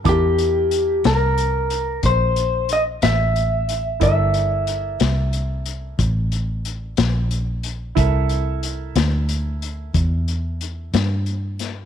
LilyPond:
<<
  \new Staff \with { instrumentName = "Clean electric guitar" } { \time 12/8 \key c \mixolydian \tempo 4. = 61 g'4. bes'4. c''4 ees''8 e''4. | e''2. r2. | r1. | }
  \new Staff \with { instrumentName = "Grand piano" } { \time 12/8 \key c \mixolydian <e' bes' a'' d'''>1. | <e' a' bes' d''>1. | <e' a' bes' e''>1. | }
  \new Staff \with { instrumentName = "Fingered electric bass" } { \clef bass \time 12/8 \key c \mixolydian e,4. c,4. bes,,4. a,,4. | g,,4. c,4. a,,4. bes,,4. | c,4. d,4. e,4. g,4. | }
  \new DrumStaff \with { instrumentName = "Drums" } \drummode { \time 12/8 <hh bd>8 hh8 hh8 <hh sn>8 hh8 hh8 <hh bd>8 hh8 hh8 <hh sn>8 hh8 hh8 | <hh bd>8 hh8 hh8 <hh sn>8 hh8 hh8 <hh bd>8 hh8 hh8 <hh sn>8 hh8 hh8 | <hh bd>8 hh8 hh8 <hh sn>8 hh8 hh8 <hh bd>8 hh8 hh8 <hh sn>8 hh8 <hh sn>8 | }
>>